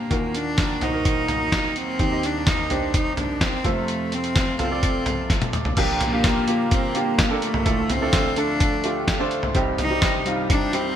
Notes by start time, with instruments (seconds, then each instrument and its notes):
Already playing: grand piano G2 D3 D4 G4 A#4, cello A#3
0.10 grand piano D#2 A#2 D#3 F#4 A#4, analog synth pad A#2 D#3 F#3 A#3 F#4, kick, closed hi-hat
0.35 cello D4, closed hi-hat
0.58 kick, snare, closed hi-hat
0.81 grand piano D#4 F#4 C5, cello D#4, closed hi-hat, floor tom
0.93 grand piano D#4 F#4 A#4
1.05 kick, closed hi-hat
1.28 closed hi-hat, floor tom
1.52 kick, snare, closed hi-hat
1.76 cello C4, closed hi-hat
1.99 analog synth pad D#2 C3 G3 G4, grand piano D#2 D#3 D#4 G4 C5, kick, closed hi-hat
2.11 grand piano D#4 G4 D#5
2.23 cello D4, closed hi-hat
2.47 cello D#4, kick, snare, closed hi-hat
2.70 cello D4, grand piano D#4 G4 C5, closed hi-hat, floor tom
2.94 cello D#4, kick, closed hi-hat
3.17 cello D4, closed hi-hat, floor tom
3.41 cello C4, kick, snare, closed hi-hat
3.64 grand piano F2 C3 F4 A4 C5, analog synth pad F3 A3 F4 A4, cello A3, kick, closed hi-hat
3.88 closed hi-hat
4.12 cello C4, closed hi-hat
4.24 closed hi-hat
4.36 kick, snare, closed hi-hat
4.59 cello C4, grand piano F4 A4 C5, closed hi-hat, floor tom
4.70 grand piano F4 A4 D5
4.83 kick, closed hi-hat
5.06 closed hi-hat, floor tom
5.30 kick, snare, closed hi-hat
5.41 closed hi-hat, high tom
5.53 closed hi-hat, mid tom
5.65 floor tom
5.77 grand piano A#2 F3 A#3 D4 F4 G4, analog synth pad D3 G3 A#3 F4 A#4, kick, closed hi-hat, crash
6.01 cello A#3, closed hi-hat, floor tom
6.12 grand piano A#3 D4 F4 G4
6.24 kick, snare, closed hi-hat
6.47 grand piano A#3 D4 F4 G4, closed hi-hat
6.71 cello C4, kick, closed hi-hat
6.95 grand piano A#3 D4 F4 G4, cello A#3, closed hi-hat
7.19 kick, snare, closed hi-hat
7.30 grand piano A#3 D4 F4 A4
7.42 cello A3, closed hi-hat
7.54 floor tom
7.65 grand piano D2 A2 A3 D4 F4 A4, analog synth pad F3 A3 A4, kick, closed hi-hat
7.90 cello C4, closed hi-hat, floor tom
8.01 grand piano A3 D4 F4 A4
8.13 kick, snare, closed hi-hat
8.36 grand piano A3 D4 F4 A4, cello D4, closed hi-hat
8.60 kick, closed hi-hat
8.84 grand piano A3 D4 F4 G4, closed hi-hat
9.08 kick, snare, closed hi-hat
9.19 grand piano A3 D4 F4 C5
9.31 closed hi-hat
9.43 floor tom
9.55 grand piano C2 G2 G3 C4 D#4 G4, analog synth pad C3 D#3 G3 D#4 G4, kick, closed hi-hat
9.78 cello D#4, closed hi-hat, floor tom
9.90 grand piano G3 C4 D#4 G4
10.02 kick, snare, closed hi-hat
10.25 grand piano G3 C4 D#4 F4, closed hi-hat
10.50 cello D4, kick, closed hi-hat
10.73 grand piano G3 C4 D#4 G4, cello C4, closed hi-hat